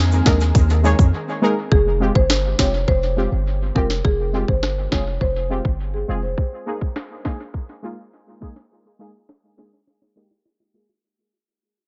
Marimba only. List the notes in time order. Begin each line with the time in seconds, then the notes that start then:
1.72 G#4
2.15 C5
2.59 C#5
2.88 C5
3.76 A#4
4.05 G#4
4.48 C5
4.92 C#5
5.21 C5
5.94 G#4
6.23 C5